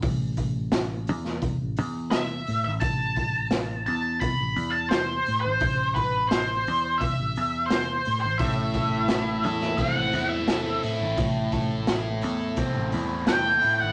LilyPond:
<<
  \new Staff \with { instrumentName = "Lead electric guitar" } { \time 4/4 \key a \dorian \tempo 4 = 86 r2. e''8. e''16 | a''4. a''8 b''8. a''16 c''8. c''16~ | c''8 b'8 c''4 e''4 c''8. c''16 | e''4. e''8 fis''8. e''8. r8 |
r2. g''8. fis''16 | }
  \new Staff \with { instrumentName = "Distorted electric guitar" } { \time 4/4 \key a \dorian r1 | r1 | r1 | a,8 a'8 e'8 a'8 c'8 e'8 a'8 e'8 |
a,8 a'8 e'8 a'8 c'8 e'8 a'8 e'8 | }
  \new Staff \with { instrumentName = "Fingered electric bass" } { \clef bass \time 4/4 \key a \dorian a,,4. e,8. a,,16 e,4 a,16 a,,16 | a,,4. e,8. a,,16 e,4 a,16 a,,16 | a,,4. e,8. a,,16 e,4 a,16 a,,16 | a,,4. e,8. a,,16 e,4 a,16 a,,16 |
a,,4. e,8. a,,16 e,4 a,16 a,,16 | }
  \new DrumStaff \with { instrumentName = "Drums" } \drummode { \time 4/4 <hho bd>8 <hho bd>8 <hho sn>8 hho16 sn16 <hho bd>8 hho8 <hho sn>8 hho8 | <hho bd>8 <hho bd>8 <hho sn>8 hho8 <hho bd>8 hho8 <hho sn>8 hho8 | <hho bd>8 <hho bd>8 <hho sn>8 hho8 <hho bd>8 hho8 <hho sn>8 hho8 | <hho bd>8 <hho bd>8 <hho sn>8 hho16 sn16 <hho bd>8 hho8 <hho sn>8 hho8 |
<hho bd>8 <hho bd>8 <hho sn>8 hho8 <hho bd>8 hho8 <hho sn>8 hho8 | }
>>